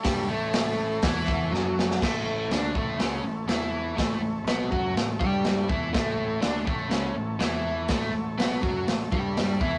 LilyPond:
<<
  \new Staff \with { instrumentName = "Transistor combo organ" } { \time 4/4 \key a \mixolydian \tempo 4 = 122 <e' a' cis''>1 | <e' a' cis''>1~ | <e' a' cis''>1 | <e' a' cis''>1~ |
<e' a' cis''>1 | }
  \new Staff \with { instrumentName = "Overdriven electric guitar" } { \clef bass \time 4/4 \key a \mixolydian <g g'>8 <a, a>4. <e e'>4 <fis fis'>4 | <a, a>4 <d d'>8 <a, a>8 <cis cis'>8 a,8 <e e'>4 | <a, a>8 a,8 <b, b>8 <fis fis'>8 a,8 <g g'>4 <e e'>8 | <a, a>4 <d d'>8 <a, a>8 <cis cis'>8 a,8 <e e'>4 |
<a, a>8 a,8 <b, b>8 <fis fis'>8 a,8 <g g'>4 <e e'>8 | }
  \new Staff \with { instrumentName = "Picked electric bass" } { \clef bass \time 4/4 \key a \mixolydian g,8 a,,4. e,4 fis,4 | a,,4 d,8 a,,8 cis,8 a,,8 e,4 | a,,8 a,,8 b,,8 fis,8 a,,8 g,4 e,8 | a,,4 d,8 a,,8 cis,8 a,,8 e,4 |
a,,8 a,,8 b,,8 fis,8 a,,8 g,4 e,8 | }
  \new DrumStaff \with { instrumentName = "Drums" } \drummode { \time 4/4 <hho bd sn>4 <hho sn>4 <hho bd sn>8 bd8 sn8 sn16 sn16 | <cymc bd sn>4 <hho sn>8 bd8 <hho sn>4 <hho sn>4 | <hho bd sn>4 <hho sn>8 bd8 <hho sn>8 bd8 <hho sn>8 bd8 | <hho bd sn>4 <hho sn>8 bd8 <hho sn>4 <hho sn>4 |
<hho bd sn>4 <hho sn>8 bd8 <hho sn>8 bd8 <hho sn>8 bd8 | }
>>